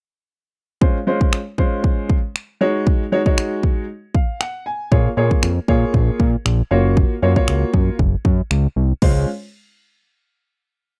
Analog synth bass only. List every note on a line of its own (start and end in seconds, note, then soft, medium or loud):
4.92 5.08 A#1 loud
5.17 5.34 A#2 medium
5.43 5.60 F2 medium
5.68 5.85 A#2 loud
5.94 6.11 A#1 loud
6.20 6.36 A#2 loud
6.46 6.62 A#1 medium
6.71 7.05 F#1 medium
7.22 7.39 F#2 loud
7.48 7.65 C#2 loud
7.74 7.90 F#2 loud
7.99 8.16 F#1 loud
8.25 8.42 F#2 loud
8.51 8.67 C#2 medium
8.76 8.93 C2 medium
9.02 9.26 C#2 loud